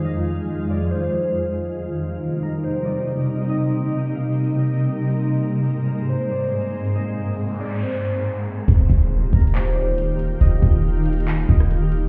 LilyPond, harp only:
\new Staff \with { instrumentName = "Harp" } { \time 4/4 \key ees \major \tempo 4 = 139 ees''4. d''8 c''2 | r4. bes'8 c''8 d''4. | ees''4. f''4 ees''8 r4 | r4. bes'8 c''8 d''4. |
ees''4. d''8 c''2 | r4. bes'8 c''8 d''4. | ees''4. f''4 ees''8 r4 | }